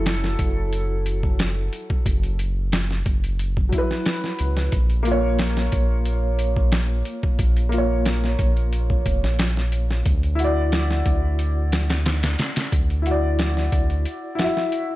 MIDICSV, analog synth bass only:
0, 0, Header, 1, 2, 480
1, 0, Start_track
1, 0, Tempo, 666667
1, 1480, Time_signature, 4, 2, 24, 8
1, 10768, End_track
2, 0, Start_track
2, 0, Title_t, "Analog synth bass"
2, 0, Program_c, 0, 38
2, 0, Note_on_c, 0, 30, 108
2, 258, Note_off_c, 0, 30, 0
2, 283, Note_on_c, 0, 30, 90
2, 1220, Note_off_c, 0, 30, 0
2, 1483, Note_on_c, 0, 30, 109
2, 2180, Note_off_c, 0, 30, 0
2, 2203, Note_on_c, 0, 30, 98
2, 2660, Note_off_c, 0, 30, 0
2, 3170, Note_on_c, 0, 37, 88
2, 3378, Note_off_c, 0, 37, 0
2, 3402, Note_on_c, 0, 34, 105
2, 4099, Note_off_c, 0, 34, 0
2, 4123, Note_on_c, 0, 34, 99
2, 5060, Note_off_c, 0, 34, 0
2, 5321, Note_on_c, 0, 34, 109
2, 6019, Note_off_c, 0, 34, 0
2, 6043, Note_on_c, 0, 34, 100
2, 6500, Note_off_c, 0, 34, 0
2, 6524, Note_on_c, 0, 29, 80
2, 6652, Note_on_c, 0, 34, 85
2, 6663, Note_off_c, 0, 29, 0
2, 7221, Note_off_c, 0, 34, 0
2, 7243, Note_on_c, 0, 38, 110
2, 7940, Note_off_c, 0, 38, 0
2, 7962, Note_on_c, 0, 38, 96
2, 8899, Note_off_c, 0, 38, 0
2, 9163, Note_on_c, 0, 38, 102
2, 9860, Note_off_c, 0, 38, 0
2, 9883, Note_on_c, 0, 38, 91
2, 10121, Note_off_c, 0, 38, 0
2, 10768, End_track
0, 0, End_of_file